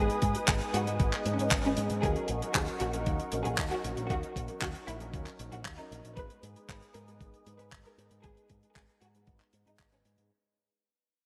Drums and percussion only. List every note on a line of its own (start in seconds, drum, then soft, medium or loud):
0.10 closed hi-hat medium
0.22 kick medium
0.22 closed hi-hat medium
0.35 closed hi-hat medium
0.48 kick loud
0.48 clap loud
0.48 closed hi-hat medium
0.61 closed hi-hat medium
0.74 closed hi-hat loud
0.87 closed hi-hat medium
1.00 kick loud
1.00 closed hi-hat medium
1.12 clap soft
1.12 closed hi-hat medium
1.26 closed hi-hat medium
1.39 closed hi-hat medium
1.51 kick loud
1.51 clap loud
1.51 closed hi-hat medium
1.65 closed hi-hat medium
1.77 closed hi-hat loud
1.90 closed hi-hat medium
2.03 kick loud
2.03 closed hi-hat medium
2.16 closed hi-hat soft
2.28 closed hi-hat medium
2.42 closed hi-hat medium
2.54 kick loud
2.54 clap loud
2.54 closed hi-hat medium
2.68 closed hi-hat medium
2.80 closed hi-hat loud
2.93 closed hi-hat medium
3.06 kick loud
3.06 closed hi-hat medium
3.20 closed hi-hat medium
3.32 closed hi-hat loud
3.45 closed hi-hat medium
3.58 kick loud
3.58 clap loud
3.58 closed hi-hat medium
3.71 closed hi-hat medium
3.84 closed hi-hat loud
3.97 closed hi-hat medium
4.10 kick loud
4.10 closed hi-hat medium
4.23 closed hi-hat soft
4.36 kick medium
4.36 closed hi-hat medium
4.48 closed hi-hat soft
4.62 kick loud
4.62 clap loud
4.62 closed hi-hat medium
4.75 closed hi-hat medium
4.88 closed hi-hat medium
5.00 closed hi-hat soft
5.14 kick loud
5.14 closed hi-hat medium
5.26 clap soft
5.26 closed hi-hat medium
5.39 closed hi-hat medium
5.52 closed hi-hat soft
5.65 kick loud
5.65 clap loud
5.65 closed hi-hat medium
5.78 closed hi-hat soft
5.92 closed hi-hat medium
6.05 closed hi-hat medium
6.17 kick loud
6.17 closed hi-hat medium
6.30 closed hi-hat medium
6.43 closed hi-hat medium
6.56 closed hi-hat medium
6.69 kick loud
6.69 clap loud
6.69 closed hi-hat medium
6.82 closed hi-hat medium
6.94 closed hi-hat loud
7.08 closed hi-hat medium
7.21 kick loud
7.21 closed hi-hat medium
7.34 closed hi-hat soft
7.46 closed hi-hat medium
7.59 closed hi-hat medium
7.72 kick loud
7.72 clap loud
7.72 closed hi-hat medium
7.86 closed hi-hat medium
7.99 closed hi-hat medium
8.11 closed hi-hat medium
8.23 kick loud
8.23 closed hi-hat medium
8.37 closed hi-hat medium
8.49 kick medium
8.49 closed hi-hat medium
8.63 closed hi-hat medium
8.76 kick loud
8.76 clap loud
8.76 closed hi-hat medium
8.89 closed hi-hat medium
9.01 closed hi-hat loud
9.15 closed hi-hat medium
9.27 kick loud
9.27 closed hi-hat medium
9.40 clap soft
9.40 closed hi-hat medium
9.53 closed hi-hat medium
9.67 closed hi-hat soft
9.79 kick loud
9.79 clap loud
9.79 closed hi-hat medium
9.92 closed hi-hat medium
10.05 closed hi-hat medium
10.18 closed hi-hat medium